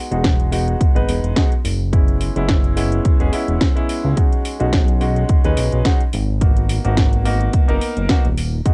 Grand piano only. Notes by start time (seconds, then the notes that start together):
0.11 G#3 B3 D#4 F#4
0.52 G#3 B3 D#4 F#4
0.95 G#3 B3 D#4 B4
1.36 G#3 B3 D#4 F#4
1.93 G#3 B3 C#4 E4
2.36 G#3 B3 C#4 E4
2.76 G#3 B3 C#4 E4
3.20 G#3 B3 C#4 G#4
3.32 G#3 B3 C#4 E4
3.76 G#3 B3 C#4 E4
4.17 G#3 C#4 D#4 F#4
4.60 G#3 C#4 D#4 F#4
5.00 G#3 C#4 D#4 F#4
5.44 G#3 C#4 D#4 B4
5.85 G#3 C#4 D#4 F#4
6.41 A#3 B3 D#4 F#4
6.84 A#3 B3 D#4 F#4
7.25 A#3 B3 D#4 F#4
7.68 A#3 B3 D#4 A#4
8.09 A#3 B3 D#4 F#4
8.65 G#3 B3 D#4 F#4